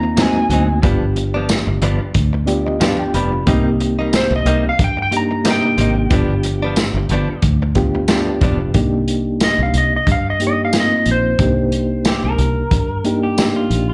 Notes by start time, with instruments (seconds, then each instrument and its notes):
Already playing: fingered electric bass D#2, reed electric piano A#3 C4 D#4 F4, electric slide guitar A#5
0.03 muted clean electric guitar stroke
0.16 clean electric guitar G#2 F#3 C4 D#4, reed electric piano A#3 C4 D#4 F#4, snare, closed hi-hat, tambourine
0.22 electric slide guitar G#5
0.49 fingered electric bass D2, clean electric guitar G#2 F#3 C4, closed hi-hat
0.54 clean electric guitar D#4
0.68 muted clean electric guitar stroke
0.82 fingered electric bass G1, clean electric guitar G2 F3 B3 D4, reed electric piano B3 D4 F4 G4, kick, closed hi-hat
1.16 muted clean electric guitar stroke, closed hi-hat
1.34 clean electric guitar F3 B3 D4
1.49 muted clean electric guitar stroke, snare, closed hi-hat, tambourine
1.67 fingered electric bass G1, muted clean electric guitar stroke
1.81 fingered electric bass G1, clean electric guitar G2 F3 B3 D4, closed hi-hat
2.01 muted clean electric guitar stroke
2.14 fingered electric bass D2, kick, closed hi-hat
2.33 muted clean electric guitar stroke
2.46 reed electric piano B3 D4 F4 G4 D5, muted clean electric guitar stroke, closed hi-hat
2.65 reed electric piano D#5, muted clean electric guitar stroke
2.80 clean electric guitar G2 F3 B3 D4, reed electric piano B3 D4 F4 G4 F5, snare, closed hi-hat, tambourine
2.99 reed electric piano G5
3.14 fingered electric bass F1, clean electric guitar G2 F3 B3 D4, reed electric piano B5, closed hi-hat
3.32 muted clean electric guitar stroke
3.46 fingered electric bass C2, clean electric guitar C3 G3 A#3 D#4, reed electric piano A#3 C4 D#4 G4, kick, closed hi-hat
3.80 muted clean electric guitar stroke, closed hi-hat
3.99 clean electric guitar G3 A#3 D#4
4.13 electric slide guitar C5, muted clean electric guitar stroke, snare, closed hi-hat, tambourine
4.31 fingered electric bass C2, muted clean electric guitar stroke
4.36 electric slide guitar D#5
4.45 fingered electric bass C2, clean electric guitar C3 G3 A#3 D#4, closed hi-hat
4.65 muted clean electric guitar stroke
4.69 electric slide guitar F5
4.79 fingered electric bass G2, kick, closed hi-hat
4.84 electric slide guitar G5
4.97 muted clean electric guitar stroke
5.02 electric slide guitar G5
5.11 reed electric piano A#3 D4 D#4 G4, muted clean electric guitar stroke, closed hi-hat
5.17 electric slide guitar A#5
5.31 muted clean electric guitar stroke
5.44 clean electric guitar C3 G3 A#3 D#4, reed electric piano A#3 D4 D#4 G4, snare, closed hi-hat, tambourine
5.51 electric slide guitar G5
5.78 fingered electric bass G#1, clean electric guitar C3 G3 A#3 D#4, closed hi-hat
5.96 muted clean electric guitar stroke
6.09 fingered electric bass G1, clean electric guitar G2 F3 B3, reed electric piano B3 D4 F4 G4, kick, closed hi-hat
6.14 clean electric guitar D4
6.43 muted clean electric guitar stroke, closed hi-hat
6.62 clean electric guitar F3 B3 D4
6.76 muted clean electric guitar stroke, snare, closed hi-hat, tambourine
6.94 fingered electric bass G1, muted clean electric guitar stroke
7.09 fingered electric bass G1, clean electric guitar G2 F3, closed hi-hat
7.13 clean electric guitar B3 D4
7.29 muted clean electric guitar stroke
7.42 fingered electric bass D2, kick, closed hi-hat
7.62 muted clean electric guitar stroke
7.75 reed electric piano B3 D4 F4 G4, muted clean electric guitar stroke, kick, closed hi-hat
7.95 muted clean electric guitar stroke
8.08 clean electric guitar G2 F3 B3 D4, reed electric piano B3 D4 F4 G4, snare, closed hi-hat, tambourine
8.41 fingered electric bass F1, clean electric guitar G2 F3 B3 D4, kick, closed hi-hat
8.60 muted clean electric guitar stroke
8.74 fingered electric bass C2, reed electric piano A#3 D4 D#4 G4, kick, closed hi-hat
9.08 closed hi-hat
9.40 electric slide guitar D#5, snare, closed hi-hat, tambourine
9.59 fingered electric bass C2, electric slide guitar F5
9.74 fingered electric bass C2, closed hi-hat
9.78 electric slide guitar D#5
9.96 electric slide guitar D#5
10.07 fingered electric bass G2, kick, closed hi-hat
10.12 electric slide guitar F5
10.30 electric slide guitar D#5
10.39 reed electric piano A#3 D4 D#4 G4, closed hi-hat
10.47 electric slide guitar D#5
10.65 electric slide guitar F5
10.73 reed electric piano A#3 C4 D#4 F4, snare, closed hi-hat, tambourine
10.80 electric slide guitar D#5
11.06 fingered electric bass A#1, closed hi-hat
11.11 electric slide guitar C5
11.39 fingered electric bass C2, reed electric piano A#3 D4 D#4 G4, kick, closed hi-hat
11.72 closed hi-hat
12.05 clean electric guitar G4, snare, closed hi-hat, tambourine
12.24 fingered electric bass C2, clean electric guitar A#4
12.38 fingered electric bass C2, closed hi-hat
12.71 fingered electric bass G2, kick, closed hi-hat
13.04 reed electric piano A#3 D4 D#4 G4, closed hi-hat
13.23 clean electric guitar G4
13.37 reed electric piano A#3 D4 D#4 G4, snare, closed hi-hat, tambourine
13.56 clean electric guitar F4
13.70 fingered electric bass A#1, closed hi-hat
13.90 clean electric guitar F4